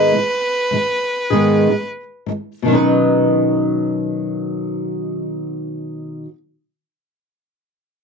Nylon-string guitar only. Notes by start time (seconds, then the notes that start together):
Already playing: G#2 D#3 G#3 B3 D#4 G#4
0.14 G#2 D#3 G#3
0.71 G#2 D#3 G#3
1.30 G#2 D#3 G#3 B3 D#4 G#4
1.69 G#2 D#3 G#3
2.26 G#2 D#3 G#3
2.62 B2 D#3
2.68 F#3 C#4
2.72 D#4 B4